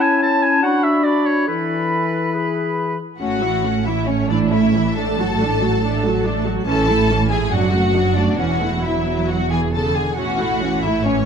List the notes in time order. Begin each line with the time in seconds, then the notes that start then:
Already playing: C#4 E4 A5
0.02 G#5
0.22 E4 A5
0.42 G#5
0.62 D4 F#4 F#5 B5
0.84 E5
1.04 F#4 D5 B5
1.26 C#5
1.47 E3 A4 B4 B5
2.34 G#4 B5
3.20 A1 A2 A3 C#4 F#4 F#5
3.42 E3 E4
3.65 A3 C#4
3.85 E3 E4 E5
4.07 A3 C#4 C#5
4.29 E3 D4 E4 D5
4.51 A3 C#4 E4 E5
4.75 E3 E4
4.96 A3 D4 A4 A5
5.20 F#3 F#4
5.41 A3 D4
5.63 F#3 F#4
5.84 A3 D4
6.05 F#3 F#4
6.25 A3 D4
6.45 F#3 F#4
6.67 A1 A2 E3 C#4 A4 A5
6.89 A3 E4
7.10 E3 C#4
7.31 A3 E4 G#4 G#5
7.52 F#1 F#2 F#3 D4 F#4 F#5
7.73 A3 F#4
7.95 F#3 D4
8.16 A3 D4 F#4 D5
8.38 E1 E2 E3 C#4 F#4 F#5
8.61 A3 E4
8.83 F#3 E4 E5
9.29 F#4 F#5
9.50 E3 G#4 G#5
9.73 C#3 A4 A5
9.95 D3 G#4 G#5
10.17 A1 A2 E3 C#4 F#4 F#5
10.40 A3 E4
10.63 E3 C#4
10.83 A3 E4 E5
11.04 E3 C#4 C#5